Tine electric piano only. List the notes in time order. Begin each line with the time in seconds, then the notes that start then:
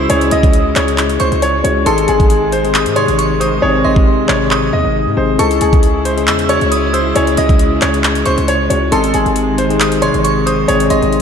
Already playing: G#3 C#4 E4 F#4 G#4
0.09 G#3 C#4 E4 G#4
0.76 G#3 C#4 E4 G#4
1.64 G#3 C#4 E4 F#4
1.85 G#3 C4 D#4 G#4
2.64 G#3 C4 D#4 G#4
2.96 C3 G#3 D#4 G#4
3.62 G#3 C4 D#4 G#4
4.28 C3 G#3 D#4 G#4
5.16 G#3 C4 D#4 G#4
5.38 G#3 C#4 E4 G#4
6.16 G#3 C#4 E4 G#4
6.49 G#3 C#4 E4 F#4
7.15 G#3 C#4 E4 G#4
7.81 G#3 C#4 E4 G#4
8.70 G#3 C#4 E4 F#4
8.91 G#3 C4 D#4 G#4
9.69 G#3 C4 D#4 G#4
10.02 C3 G#3 D#4 G#4
10.68 G#3 C4 D#4 G#4